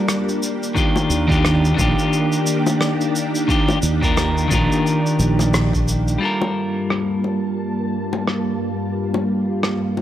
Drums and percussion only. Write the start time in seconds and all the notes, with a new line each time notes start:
0.09 cross-stick, cabasa
0.29 cabasa
0.43 cabasa
0.63 cabasa
0.76 kick, cabasa
0.96 high bongo, cabasa
1.11 cabasa
1.30 kick, cabasa
1.45 cross-stick, cabasa
1.65 cabasa
1.78 kick, high bongo, cabasa
1.99 cabasa
2.13 cabasa
2.32 cabasa
2.47 cabasa
2.67 high bongo, cabasa
2.81 cross-stick, cabasa
3.01 cabasa
3.16 cabasa
3.35 cabasa
3.49 kick, cabasa
3.69 high bongo, cabasa
3.83 cabasa
4.03 kick, cabasa
4.17 cross-stick, cabasa
4.38 cabasa
4.51 kick, high bongo, cabasa
4.72 cabasa
4.87 cabasa
5.07 cabasa
5.20 cabasa
5.39 cross-stick, high bongo, cabasa
5.54 cross-stick, cabasa
5.73 kick, cabasa
5.88 cabasa
6.08 cabasa
6.42 high bongo
6.90 cross-stick
7.24 high bongo
8.13 high bongo
8.28 cross-stick
9.14 high bongo
9.63 cross-stick
9.97 high bongo